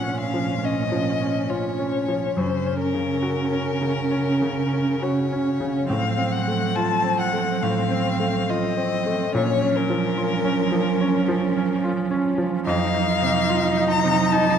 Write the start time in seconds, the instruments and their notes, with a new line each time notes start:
Already playing: grand piano A#2 F3 C#4 F4, cello A#2, viola C#4, violin F#5
0.04 grand piano C#4
0.20 violin F5
0.34 grand piano F3
0.63 grand piano C#4, violin D#5
0.92 grand piano F3
1.21 grand piano C#4
1.50 grand piano F4, violin C#5
1.79 grand piano C#4
2.08 grand piano F3
2.37 grand piano F#2, cello C#3, viola C#4, violin C5
2.66 grand piano C#4
2.81 violin A#4
2.94 grand piano C#3
3.22 grand piano F#4
3.52 grand piano C#4
3.81 grand piano C#3
4.11 grand piano C#4
4.41 grand piano C#3
4.73 grand piano C#4
5.02 grand piano F#4, violin C#5
5.32 grand piano C#4
5.60 grand piano C#3
5.88 grand piano A2, cello F3, viola C4, violin F5
6.18 grand piano C4
6.31 violin F#5
6.48 grand piano A3
6.75 grand piano F4, violin A5
7.04 grand piano C4
7.19 violin F#5
7.33 grand piano A3
7.62 grand piano A2, violin F5
7.90 grand piano C4
8.20 grand piano A3
8.49 grand piano F4, violin D#5
8.77 grand piano C4
9.06 grand piano A3
9.33 grand piano A#2, cello F3, viola C#4, violin C#5
9.62 grand piano C#4
9.75 violin A#4
9.90 grand piano F3
10.17 grand piano F4
10.44 grand piano C#4
10.72 grand piano F3
11.01 grand piano C#4
11.28 grand piano F3
11.57 grand piano C#4
11.84 grand piano F4
12.11 grand piano C#4
12.38 grand piano F3
12.65 grand piano F2, cello F3, viola D#4, violin F5
12.94 grand piano D#4
13.22 grand piano C3
13.49 grand piano F4
13.77 grand piano D#4
13.90 violin A#5
14.04 grand piano C3
14.31 grand piano D#4, violin A5